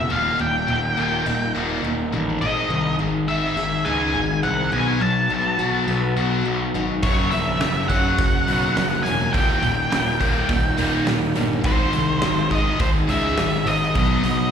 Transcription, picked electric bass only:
0, 0, Header, 1, 2, 480
1, 0, Start_track
1, 0, Tempo, 577478
1, 84, Time_signature, 4, 2, 24, 8
1, 12061, End_track
2, 0, Start_track
2, 0, Title_t, "Picked electric bass"
2, 0, Program_c, 0, 34
2, 93, Note_on_c, 0, 27, 85
2, 297, Note_off_c, 0, 27, 0
2, 334, Note_on_c, 0, 27, 92
2, 538, Note_off_c, 0, 27, 0
2, 572, Note_on_c, 0, 27, 81
2, 776, Note_off_c, 0, 27, 0
2, 807, Note_on_c, 0, 27, 86
2, 1014, Note_off_c, 0, 27, 0
2, 1046, Note_on_c, 0, 27, 77
2, 1253, Note_off_c, 0, 27, 0
2, 1281, Note_on_c, 0, 27, 85
2, 1490, Note_off_c, 0, 27, 0
2, 1524, Note_on_c, 0, 27, 78
2, 1732, Note_off_c, 0, 27, 0
2, 1761, Note_on_c, 0, 33, 91
2, 1970, Note_off_c, 0, 33, 0
2, 1998, Note_on_c, 0, 32, 90
2, 2208, Note_off_c, 0, 32, 0
2, 2238, Note_on_c, 0, 36, 89
2, 2448, Note_off_c, 0, 36, 0
2, 2482, Note_on_c, 0, 32, 82
2, 2898, Note_off_c, 0, 32, 0
2, 2962, Note_on_c, 0, 32, 85
2, 3171, Note_off_c, 0, 32, 0
2, 3208, Note_on_c, 0, 37, 88
2, 3414, Note_off_c, 0, 37, 0
2, 3446, Note_on_c, 0, 32, 90
2, 3653, Note_off_c, 0, 32, 0
2, 3686, Note_on_c, 0, 36, 75
2, 3893, Note_off_c, 0, 36, 0
2, 3926, Note_on_c, 0, 35, 95
2, 4133, Note_off_c, 0, 35, 0
2, 4163, Note_on_c, 0, 35, 83
2, 4371, Note_off_c, 0, 35, 0
2, 4402, Note_on_c, 0, 35, 79
2, 4611, Note_off_c, 0, 35, 0
2, 4637, Note_on_c, 0, 35, 92
2, 4848, Note_off_c, 0, 35, 0
2, 4879, Note_on_c, 0, 35, 87
2, 5089, Note_off_c, 0, 35, 0
2, 5121, Note_on_c, 0, 35, 97
2, 5330, Note_off_c, 0, 35, 0
2, 5365, Note_on_c, 0, 35, 76
2, 5572, Note_off_c, 0, 35, 0
2, 5605, Note_on_c, 0, 32, 85
2, 5813, Note_off_c, 0, 32, 0
2, 5847, Note_on_c, 0, 30, 89
2, 6053, Note_off_c, 0, 30, 0
2, 6087, Note_on_c, 0, 34, 76
2, 6294, Note_off_c, 0, 34, 0
2, 6328, Note_on_c, 0, 30, 88
2, 6742, Note_off_c, 0, 30, 0
2, 6804, Note_on_c, 0, 30, 83
2, 7012, Note_off_c, 0, 30, 0
2, 7053, Note_on_c, 0, 35, 92
2, 7257, Note_off_c, 0, 35, 0
2, 7285, Note_on_c, 0, 30, 85
2, 7492, Note_off_c, 0, 30, 0
2, 7528, Note_on_c, 0, 28, 85
2, 7734, Note_off_c, 0, 28, 0
2, 7765, Note_on_c, 0, 27, 92
2, 7972, Note_off_c, 0, 27, 0
2, 8005, Note_on_c, 0, 27, 84
2, 8212, Note_off_c, 0, 27, 0
2, 8239, Note_on_c, 0, 27, 96
2, 8448, Note_off_c, 0, 27, 0
2, 8484, Note_on_c, 0, 27, 91
2, 8691, Note_off_c, 0, 27, 0
2, 8721, Note_on_c, 0, 27, 92
2, 8930, Note_off_c, 0, 27, 0
2, 8959, Note_on_c, 0, 27, 92
2, 9168, Note_off_c, 0, 27, 0
2, 9204, Note_on_c, 0, 27, 78
2, 9411, Note_off_c, 0, 27, 0
2, 9443, Note_on_c, 0, 31, 84
2, 9650, Note_off_c, 0, 31, 0
2, 9678, Note_on_c, 0, 32, 91
2, 9888, Note_off_c, 0, 32, 0
2, 9924, Note_on_c, 0, 36, 84
2, 10131, Note_off_c, 0, 36, 0
2, 10164, Note_on_c, 0, 32, 78
2, 10579, Note_off_c, 0, 32, 0
2, 10637, Note_on_c, 0, 32, 94
2, 10847, Note_off_c, 0, 32, 0
2, 10876, Note_on_c, 0, 37, 92
2, 11086, Note_off_c, 0, 37, 0
2, 11118, Note_on_c, 0, 32, 76
2, 11327, Note_off_c, 0, 32, 0
2, 11354, Note_on_c, 0, 32, 80
2, 11565, Note_off_c, 0, 32, 0
2, 11598, Note_on_c, 0, 35, 81
2, 11807, Note_off_c, 0, 35, 0
2, 11835, Note_on_c, 0, 35, 87
2, 12046, Note_off_c, 0, 35, 0
2, 12061, End_track
0, 0, End_of_file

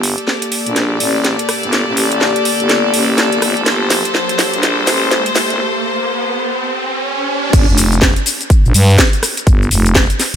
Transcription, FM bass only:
0, 0, Header, 1, 2, 480
1, 0, Start_track
1, 0, Key_signature, -2, "minor"
1, 0, Tempo, 483871
1, 1712, Time_signature, 4, 2, 24, 8
1, 10278, End_track
2, 0, Start_track
2, 0, Title_t, "FM bass"
2, 0, Program_c, 0, 39
2, 0, Note_on_c, 0, 31, 92
2, 155, Note_off_c, 0, 31, 0
2, 657, Note_on_c, 0, 34, 93
2, 977, Note_off_c, 0, 34, 0
2, 992, Note_on_c, 0, 33, 96
2, 1354, Note_off_c, 0, 33, 0
2, 1618, Note_on_c, 0, 31, 94
2, 1835, Note_off_c, 0, 31, 0
2, 1858, Note_on_c, 0, 33, 96
2, 2315, Note_off_c, 0, 33, 0
2, 2578, Note_on_c, 0, 31, 95
2, 2897, Note_off_c, 0, 31, 0
2, 2913, Note_on_c, 0, 33, 97
2, 3275, Note_off_c, 0, 33, 0
2, 3298, Note_on_c, 0, 31, 94
2, 3377, Note_off_c, 0, 31, 0
2, 3392, Note_on_c, 0, 31, 96
2, 3515, Note_off_c, 0, 31, 0
2, 3538, Note_on_c, 0, 29, 96
2, 3617, Note_off_c, 0, 29, 0
2, 3633, Note_on_c, 0, 31, 96
2, 3995, Note_off_c, 0, 31, 0
2, 4497, Note_on_c, 0, 34, 98
2, 4817, Note_off_c, 0, 34, 0
2, 4832, Note_on_c, 0, 33, 100
2, 5194, Note_off_c, 0, 33, 0
2, 5455, Note_on_c, 0, 31, 96
2, 5551, Note_off_c, 0, 31, 0
2, 7472, Note_on_c, 0, 31, 96
2, 7595, Note_off_c, 0, 31, 0
2, 7617, Note_on_c, 0, 29, 97
2, 8074, Note_off_c, 0, 29, 0
2, 8578, Note_on_c, 0, 34, 98
2, 8657, Note_off_c, 0, 34, 0
2, 8672, Note_on_c, 0, 43, 99
2, 8897, Note_off_c, 0, 43, 0
2, 9392, Note_on_c, 0, 31, 98
2, 9617, Note_off_c, 0, 31, 0
2, 9630, Note_on_c, 0, 29, 99
2, 9994, Note_off_c, 0, 29, 0
2, 10278, End_track
0, 0, End_of_file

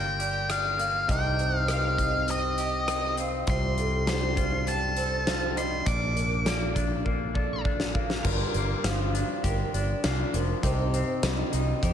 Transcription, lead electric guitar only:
0, 0, Header, 1, 2, 480
1, 0, Start_track
1, 0, Key_signature, -2, "minor"
1, 0, Tempo, 596421
1, 879, Time_signature, 4, 2, 24, 8
1, 9602, End_track
2, 0, Start_track
2, 0, Title_t, "Lead electric guitar"
2, 0, Program_c, 0, 29
2, 0, Note_on_c, 0, 79, 68
2, 406, Note_off_c, 0, 79, 0
2, 409, Note_on_c, 0, 77, 64
2, 895, Note_off_c, 0, 77, 0
2, 898, Note_on_c, 0, 79, 68
2, 1269, Note_off_c, 0, 79, 0
2, 1269, Note_on_c, 0, 77, 68
2, 1373, Note_off_c, 0, 77, 0
2, 1373, Note_on_c, 0, 77, 64
2, 1855, Note_off_c, 0, 77, 0
2, 1858, Note_on_c, 0, 75, 60
2, 2536, Note_off_c, 0, 75, 0
2, 2814, Note_on_c, 0, 84, 68
2, 3283, Note_off_c, 0, 84, 0
2, 3293, Note_on_c, 0, 84, 67
2, 3768, Note_on_c, 0, 81, 72
2, 3780, Note_off_c, 0, 84, 0
2, 4490, Note_on_c, 0, 84, 69
2, 4505, Note_off_c, 0, 81, 0
2, 4708, Note_off_c, 0, 84, 0
2, 4730, Note_on_c, 0, 86, 74
2, 6132, Note_off_c, 0, 86, 0
2, 9602, End_track
0, 0, End_of_file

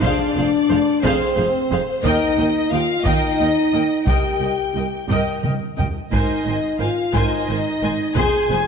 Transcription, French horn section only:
0, 0, Header, 1, 2, 480
1, 0, Start_track
1, 0, Tempo, 674916
1, 18, Time_signature, 6, 3, 24, 8
1, 2898, Tempo, 683371
1, 6128, End_track
2, 0, Start_track
2, 0, Title_t, "French horn section"
2, 0, Program_c, 0, 60
2, 16, Note_on_c, 0, 62, 79
2, 729, Note_on_c, 0, 60, 82
2, 737, Note_off_c, 0, 62, 0
2, 1321, Note_off_c, 0, 60, 0
2, 1442, Note_on_c, 0, 63, 91
2, 1918, Note_off_c, 0, 63, 0
2, 1929, Note_on_c, 0, 65, 82
2, 2172, Note_off_c, 0, 65, 0
2, 2177, Note_on_c, 0, 63, 90
2, 2899, Note_off_c, 0, 63, 0
2, 2899, Note_on_c, 0, 67, 72
2, 3606, Note_off_c, 0, 67, 0
2, 4341, Note_on_c, 0, 63, 72
2, 4791, Note_off_c, 0, 63, 0
2, 4818, Note_on_c, 0, 65, 67
2, 5058, Note_off_c, 0, 65, 0
2, 5068, Note_on_c, 0, 63, 79
2, 5784, Note_off_c, 0, 63, 0
2, 5786, Note_on_c, 0, 68, 92
2, 6128, Note_off_c, 0, 68, 0
2, 6128, End_track
0, 0, End_of_file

